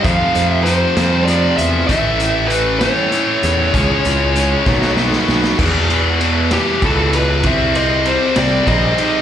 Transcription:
0.03 distorted electric guitar F2 C3 F3, picked electric bass F2, clean electric guitar F3 A3 C4 F4, lead electric guitar F5, kick, closed hi-hat
0.35 picked electric bass F2, clean electric guitar F3 A3 C4 F4, closed hi-hat
0.49 lead electric guitar E5
0.64 distorted electric guitar F2 C3 F3, clean electric guitar F3 A3 C4, lead electric guitar C5, closed hi-hat
0.68 clean electric guitar F4
0.96 distorted electric guitar F2 C3 F3, picked electric bass F2, clean electric guitar F3 A3 C4 F4, snare, closed hi-hat
1.25 distorted electric guitar F2 C3 F3, clean electric guitar F3 A3 C4, lead electric guitar D5, closed hi-hat
1.29 clean electric guitar F4
1.57 picked electric bass E2, clean electric guitar A3 C4 F4, lead electric guitar E5, closed hi-hat
1.87 picked electric bass A1, distorted electric guitar A2 E3 A3, clean electric guitar E3 A3 C#4 E4, lead electric guitar E5, kick, closed hi-hat
2.20 clean electric guitar E3 A3 C#4 E4, closed hi-hat
2.48 distorted electric guitar A2 E3, clean electric guitar E3, lead electric guitar B4, closed hi-hat
2.52 clean electric guitar A3 C#4 E4, distorted electric guitar A3
2.79 distorted electric guitar A2 E3 A3, clean electric guitar A3 C#4 E4, lead electric guitar C#5, snare, closed hi-hat
2.83 clean electric guitar E3
3.12 distorted electric guitar A2 E3 A3, clean electric guitar E3 A3 C#4 E4, closed hi-hat
3.43 picked electric bass E2, clean electric guitar E3 A3 C#4 E4, closed hi-hat
3.74 picked electric bass C#2, clean electric guitar C#3 G#3 C#4 E4, distorted electric guitar C#3 G#3 C#4, kick, closed hi-hat
4.05 picked electric bass C#2, clean electric guitar C#3 G#3 C#4 E4, closed hi-hat
4.36 distorted electric guitar C#3 G#3 C#4, clean electric guitar C#3 G#3 C#4 E4, closed hi-hat
4.66 picked electric bass B1, distorted electric guitar B2 F#3 B3, clean electric guitar B2 F#3 A3 D#4, kick, snare
4.82 snare
4.97 distorted electric guitar B2 F#3 B3, clean electric guitar B2 F#3 A3 D#4, snare
5.12 snare
5.28 picked electric bass B1, clean electric guitar B2 F#3 A3 D#4, snare
5.44 snare
5.58 distorted electric guitar E2 B2 E3, picked electric bass E2, clean electric guitar E3, kick, crash
5.90 distorted electric guitar E2 B2 E3, ride
6.21 distorted electric guitar E2 B2 E3, clean electric guitar B3, ride
6.51 distorted electric guitar E2 B2 E3, clean electric guitar E3, lead electric guitar G4, snare, ride
6.82 picked electric bass C#2, distorted electric guitar E2 B2 E3, clean electric guitar B3, lead electric guitar A4, kick, ride
7.13 clean electric guitar E4, lead electric guitar B4, ride
7.43 picked electric bass C2, clean electric guitar C3, distorted electric guitar C3 G3 C4, lead electric guitar E5, kick, ride
7.75 distorted electric guitar C3 G3 C4, lead electric guitar D#5, ride
8.05 distorted electric guitar C3 G3 C4, clean electric guitar C4, lead electric guitar C5, ride
8.36 picked electric bass C2, distorted electric guitar C3 G3 C4, clean electric guitar C3, lead electric guitar D5, snare, ride
8.66 picked electric bass A#1, distorted electric guitar C3 G3 C4, clean electric guitar C4, lead electric guitar D#5, kick, ride
8.97 clean electric guitar D#4, ride

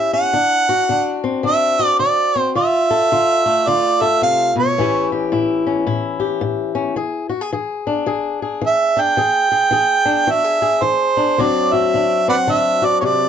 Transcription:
Already playing: steel-string acoustic guitar A2 C#4 E4 G4, harmonica E5
0.13 steel-string acoustic guitar C#4, harmonica F#5
0.33 steel-string acoustic guitar D3 D4
0.69 steel-string acoustic guitar F#4
0.89 steel-string acoustic guitar D3 D4
1.24 steel-string acoustic guitar C4
1.43 steel-string acoustic guitar D3 D4, harmonica E5
1.79 steel-string acoustic guitar F#4
1.86 harmonica D5
1.99 steel-string acoustic guitar D3, harmonica D5
2.36 steel-string acoustic guitar C4
2.55 steel-string acoustic guitar D3 F4, harmonica E5
2.91 steel-string acoustic guitar A4
3.12 steel-string acoustic guitar D3 F4
3.46 steel-string acoustic guitar A3
3.67 steel-string acoustic guitar D3 F4, harmonica D5
4.01 steel-string acoustic guitar A4, harmonica E5
4.22 steel-string acoustic guitar C3, harmonica F5
4.56 steel-string acoustic guitar B2, harmonica C#5
4.78 steel-string acoustic guitar A2 E3 C#4 E4 G4
5.12 steel-string acoustic guitar G4
5.32 steel-string acoustic guitar A2 E4
5.67 steel-string acoustic guitar C#4
5.87 steel-string acoustic guitar A2 E4
6.20 steel-string acoustic guitar G4
6.41 steel-string acoustic guitar A2
6.75 steel-string acoustic guitar C#4
6.96 steel-string acoustic guitar E3 G#4
7.29 steel-string acoustic guitar F#4
7.41 steel-string acoustic guitar G#4
7.53 steel-string acoustic guitar E3 G#4
7.87 steel-string acoustic guitar D4
8.06 steel-string acoustic guitar E3 G#4
8.42 steel-string acoustic guitar G#4
8.62 steel-string acoustic guitar E3
8.67 harmonica E5
8.97 steel-string acoustic guitar D4, harmonica G5
9.17 steel-string acoustic guitar E3 G#4
9.52 steel-string acoustic guitar G#4
9.71 steel-string acoustic guitar E3 G#4
10.05 steel-string acoustic guitar D4
10.27 steel-string acoustic guitar E3 F#4, harmonica E5
10.44 steel-string acoustic guitar G#4
10.62 steel-string acoustic guitar G#4
10.82 steel-string acoustic guitar E3, harmonica C5
11.17 steel-string acoustic guitar D4
11.38 steel-string acoustic guitar D3 F#3 C4 D4 F#4, harmonica D5
11.73 steel-string acoustic guitar F#4, harmonica E5
11.94 steel-string acoustic guitar D3 D4
12.28 steel-string acoustic guitar C4, harmonica B4 D5 F#5
12.47 steel-string acoustic guitar D3 D4, harmonica E5
12.82 steel-string acoustic guitar F#4, harmonica D5
13.01 steel-string acoustic guitar C3, harmonica C#5
13.05 harmonica D5

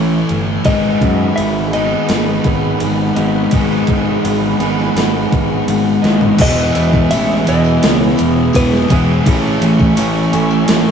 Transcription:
Already playing: picked electric bass A1, distorted electric guitar A2 E3 A3, overdriven electric guitar A2 E3 A3 C#4 E4, analog synth pad A3 G#5 C#6
0.29 picked electric bass G1, ride
0.64 picked electric bass G#1, overdriven electric guitar G#2 D#3 G#3 B3 D#4 G#4, analog synth pad G#4 F#5 B5, clean electric guitar D#5, kick, ride
1.01 picked electric bass F#2, kick, ride
1.36 picked electric bass G#1, clean electric guitar E5, ride
1.73 overdriven electric guitar G#2 D#3 G#3 B3 D#4 G#4, clean electric guitar D#5, ride
2.09 picked electric bass G#1, snare, ride
2.44 picked electric bass G#1, kick, ride
2.80 picked electric bass G#1, distorted electric guitar G#2 D#3, ride
2.85 distorted electric guitar G#3
3.16 picked electric bass G#1, overdriven electric guitar G#2 D#3 G#3 B3 D#4, ride
3.51 picked electric bass G#1, overdriven electric guitar G#2 D#3 G#3 B3 D#4, kick, ride
3.55 overdriven electric guitar B3 D#4 G#4
3.87 picked electric bass G#1, kick, ride
4.24 picked electric bass G#1, ride
4.60 picked electric bass G#1, overdriven electric guitar G#2 D#3 G#3 B3 D#4 G#4, ride
4.80 snare
4.96 picked electric bass G#1, snare, ride
5.32 picked electric bass G#1, kick, ride
5.68 picked electric bass G#1, distorted electric guitar G#2 D#3 G#3, ride
6.02 picked electric bass G#1, overdriven electric guitar G#2 D#3 G#3 B3 D#4, snare, ride
6.21 floor tom
6.38 picked electric bass E1, overdriven electric guitar E2 B2 E3 G#3 B3 E4 G#4, analog synth pad E4 G#4 D#6, clean electric guitar D#5, kick, crash, ride
6.75 picked electric bass E1, ride, tambourine
6.93 kick, tambourine
7.10 picked electric bass A1, overdriven electric guitar E3 G#3 B3 E4, clean electric guitar E5, ride, tambourine
7.31 tambourine
7.46 picked electric bass E1, distorted electric guitar B2 E3, overdriven electric guitar E3 G#3 B3 E4, clean electric guitar D#5, ride, tambourine
7.51 distorted electric guitar E2
7.64 tambourine
7.82 picked electric bass C#2, overdriven electric guitar E3 G#3 B3 E4, snare, ride
7.99 clean electric guitar C#5
8.17 picked electric bass E1, ride, tambourine
8.53 picked electric bass E1, distorted electric guitar E2 B2, overdriven electric guitar E3 G#3 B3 E4, clean electric guitar B4, kick, ride, tambourine
8.57 distorted electric guitar E3
8.71 snare, tambourine
8.89 picked electric bass E1, overdriven electric guitar E2 B2 E3 G#3 B3 G#4, clean electric guitar G#4, kick, ride, tambourine
8.93 overdriven electric guitar E4
9.24 picked electric bass A1, overdriven electric guitar A2 E3 A3 C#4 E4 A4, analog synth pad A3 G#5 C#6, kick, ride
9.61 picked electric bass A1, ride
9.79 kick, tambourine
9.97 picked electric bass A1, overdriven electric guitar A2 E3 A3 C#4 E4, ride, tambourine
10.15 tambourine
10.32 picked electric bass A1, overdriven electric guitar A2 E3 A3 C#4 E4, distorted electric guitar A2 E3 A3, ride, tambourine
10.50 tambourine
10.68 picked electric bass A1, overdriven electric guitar A2 E3 A3 C#4 E4, snare, ride, tambourine

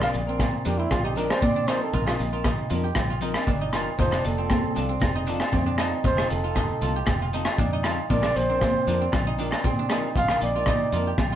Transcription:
Already playing: guzheng C4 F4 G4
0.01 clean electric guitar C4 D4 A#4, guzheng D4, trumpet F5, cross-stick, low agogo
0.13 fingered electric bass A#1, closed hi-hat, muted conga, high conga, shekere
0.27 guzheng C4, clean electric guitar C4 D4 A#4
0.39 guzheng A#3, kick, cross-stick, high conga, low agogo, shekere
0.65 fingered electric bass F2, clean electric guitar F3 C4 D4 A#4, guzheng D4, trumpet G4, closed hi-hat, shekere
0.78 guzheng C4, trumpet E4
0.91 fingered electric bass A#1, trumpet F4, kick, cross-stick, low agogo, shekere
1.04 guzheng D#4, trumpet G4
1.16 clean electric guitar F3 C4 D4 A#4, guzheng D4, trumpet A#4, closed hi-hat, shekere
1.30 clean electric guitar C4 D4 A#4, trumpet C5, cross-stick, low agogo
1.41 fingered electric bass A#2, guzheng C4, trumpet D5, kick, high conga, shekere
1.56 guzheng D4
1.67 clean electric guitar F3 C4 D4 A#4, guzheng D#4, trumpet C5, cross-stick, closed hi-hat, low agogo, shekere
1.82 trumpet A4
1.93 fingered electric bass A#1, guzheng F4, trumpet A#4, kick, shekere
2.06 clean electric guitar C4 D4 A#4, guzheng D#4, trumpet F4, cross-stick, low agogo
2.19 fingered electric bass A#1, closed hi-hat, muted conga, shekere
2.33 clean electric guitar C4 A#4, guzheng F4, muted clean electric guitar stroke
2.44 guzheng D#4, kick, cross-stick, high conga, low agogo, shekere
2.70 fingered electric bass F2, clean electric guitar F3 C4 D4 A#4, guzheng F4, closed hi-hat, high conga, shekere
2.84 guzheng G4
2.95 fingered electric bass A#1, kick, cross-stick, muted conga, low conga, low agogo, shekere
3.10 guzheng F4
3.21 clean electric guitar F3 C4 A#4, guzheng D#4, muted clean electric guitar stroke, closed hi-hat, shekere
3.34 clean electric guitar C4 D4 A#4, cross-stick, low agogo
3.47 fingered electric bass G1, guzheng D4, kick, high conga, shekere
3.61 guzheng D#4
3.72 clean electric guitar F3 D4 A#4, guzheng F4, cross-stick, closed hi-hat, muted conga, low agogo, shekere
3.98 fingered electric bass F1, clean electric guitar F3 C4 F4 A4, guzheng D#4, trumpet C5, kick, shekere
4.11 clean electric guitar C4 F4 A4, guzheng D4, cross-stick, low agogo
4.24 fingered electric bass F1, trumpet A4, closed hi-hat, muted conga, high conga, shekere
4.38 guzheng C4, clean electric guitar C4 F4 A4
4.50 guzheng C4, kick, cross-stick, high conga, low agogo, shekere
4.75 fingered electric bass C2, clean electric guitar F3 C4 F4 A4, guzheng D4, closed hi-hat, shekere
4.89 guzheng C4
5.00 fingered electric bass F1, kick, cross-stick, low agogo, shekere
5.15 guzheng D#4
5.27 clean electric guitar F3 C4 F4 A4, guzheng D4, closed hi-hat, shekere
5.40 clean electric guitar C4 A4, cross-stick, low agogo
5.52 fingered electric bass F2, guzheng C4, kick, high conga, shekere
5.66 guzheng D4
5.78 clean electric guitar F3 C4 F4 A4, guzheng D#4, cross-stick, closed hi-hat, muted conga, low agogo, shekere
6.04 fingered electric bass F1, guzheng F4, trumpet C5, kick, muted conga, shekere
6.17 clean electric guitar C4 F4 A4, guzheng D#4, cross-stick, low agogo
6.30 fingered electric bass F1, trumpet A4, closed hi-hat, muted conga, shekere
6.43 clean electric guitar C4 F4 A4, guzheng F4
6.55 guzheng D#4, kick, cross-stick, high conga, low agogo, shekere
6.81 fingered electric bass C2, clean electric guitar C4 F4 A4, guzheng F4, muted clean electric guitar stroke, closed hi-hat, high conga, shekere
6.96 guzheng G4
7.06 fingered electric bass F1, kick, cross-stick, muted conga, low conga, low agogo, shekere
7.22 guzheng F4
7.33 clean electric guitar F3 C4 F4 A4, guzheng D#4, closed hi-hat, shekere
7.45 clean electric guitar C4 F4 A4, cross-stick, low agogo
7.58 fingered electric bass F2, guzheng D4, kick, high conga, shekere
7.73 guzheng D#4
7.83 clean electric guitar F3 C4 F4 A4, guzheng F4, cross-stick, closed hi-hat, muted conga, low agogo
8.10 fingered electric bass A#1, clean electric guitar F3 C4 D4 A#4, guzheng F4, trumpet D5, kick, shekere
8.22 clean electric guitar C4 D4 A#4, guzheng D4, cross-stick, low agogo
8.36 fingered electric bass A#1, trumpet C5, closed hi-hat, muted conga, high conga, shekere
8.49 guzheng C4, clean electric guitar C4 D4 A#4
8.61 guzheng C4, kick, cross-stick, high conga, low agogo, shekere
8.87 fingered electric bass F2, clean electric guitar F3 C4 D4 A#4, guzheng D4, closed hi-hat, shekere
9.01 guzheng C4
9.12 fingered electric bass A#1, kick, cross-stick, low agogo, shekere
9.27 guzheng D#4
9.38 clean electric guitar F3 C4 D4 A#4, guzheng D4, closed hi-hat
9.51 clean electric guitar C4 A#4, cross-stick, low agogo
9.64 fingered electric bass A#2, guzheng C4, kick, high conga, shekere
9.79 guzheng D4
9.89 clean electric guitar F3 C4 D4 A#4, guzheng D#4, cross-stick, closed hi-hat, muted conga, low agogo, shekere
10.15 fingered electric bass A#1, guzheng F4, trumpet F5, kick, shekere
10.28 clean electric guitar C4 D4 A#4, guzheng D#4, cross-stick, low agogo
10.41 fingered electric bass A#1, trumpet D5, closed hi-hat, shekere
10.55 clean electric guitar C4 D4 A#4, guzheng F4
10.66 guzheng D#4, kick, cross-stick, high conga, low agogo, shekere
10.92 fingered electric bass F2, clean electric guitar F3 C4 D4 A#4, guzheng F4, closed hi-hat, high conga, shekere
11.07 guzheng G4
11.18 fingered electric bass A#1, kick, cross-stick, muted conga, low conga, low agogo, shekere
11.32 guzheng F4

